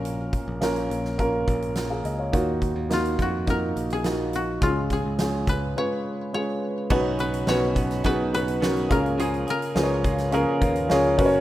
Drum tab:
CC |----------------|----------------|----------------|x---------------|
HH |x-x-xxx-x-xxx-x-|x-x-xxx-x-xxx-x-|x-x-x-x---------|--xx--xxx-xx-xxx|
SD |----o--o----o---|----o-------o---|----o-----------|----o--o----o---|
BD |--o-----o-o-----|o-o---o-o-------|o-o---o---------|o-----o-o-----o-|

CC |----------------|
HH |xxxx--xxx-xx-xox|
SD |----o--o----o---|
BD |------o---o---o-|